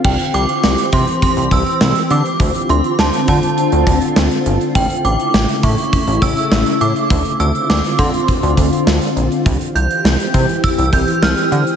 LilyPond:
<<
  \new Staff \with { instrumentName = "Synth bell" } { \time 4/4 \key d \minor \tempo 4 = 102 g''8 d'''4 c'''8 c'''8 e'''4 d'''8~ | d'''8 c'''8 a''8 a''4. r4 | g''8 d'''4 cis'''8 cis'''8 e'''4 d'''8~ | d'''8 e'''8 d'''8 c'''4. r4 |
r8 g'''4 r8 e'''8 g'''8 f'''4 | }
  \new Staff \with { instrumentName = "String machine" } { \time 4/4 \key d \minor <e c' g'>2.~ <e c' g'>8 <d c' f'>8~ | <d c' f'>1 | <cis a e'>1 | <d c' f'>1 |
<e c' g'>2.~ <e c' g'>8 <d c' f'>8 | }
  \new Staff \with { instrumentName = "Analog synth bass" } { \clef bass \time 4/4 \key d \minor c,16 r16 c,16 r16 c,16 r16 c16 r8 c,16 c,16 r16 c,16 r16 d16 r16 | d,16 r16 d,16 r16 d,16 r16 d16 r8 d,16 d,16 r16 d,16 r16 g,,16 r16 | a,,16 r16 a,,16 r16 a,,16 r16 a,16 r8 a,,16 a,,16 r16 a,,16 r16 a,16 r16 | d,16 r16 d,16 r16 d,16 r16 d16 r8 d,16 d,16 r16 d,16 r16 bes,,16 r16 |
c,16 r16 c,16 r16 c,16 r16 c16 r8 c,16 c,16 r16 c,16 r16 d16 r16 | }
  \new DrumStaff \with { instrumentName = "Drums" } \drummode { \time 4/4 <cymc bd>16 hh16 hh16 hh16 sn16 hh16 <hh bd>16 hh16 <hh bd>16 hh16 <hh bd>16 hh16 sn16 hh16 hh16 hh16 | <hh bd>16 hh16 hh16 hh16 sn16 hh16 <hh bd>16 hh16 hh16 hh16 <hh bd>16 hh16 sn16 hh16 hh16 hh16 | <hh bd>16 hh16 hh16 hh16 sn16 hh16 <hh bd>16 hh16 <hh bd>16 hh16 <hh bd>16 hh16 sn16 hh16 hh16 hh16 | <hh bd>16 hh16 hh16 hh16 sn16 hh16 <hh bd>16 hh16 <hh bd>16 hh16 <hh bd>16 hh16 sn16 hh16 hh16 hh16 |
<hh bd>16 hh16 hh16 hh16 sn16 hh16 <hh bd>16 hh16 <hh bd>16 hh16 <hh bd>16 hh16 sn16 hh16 hh16 hh16 | }
>>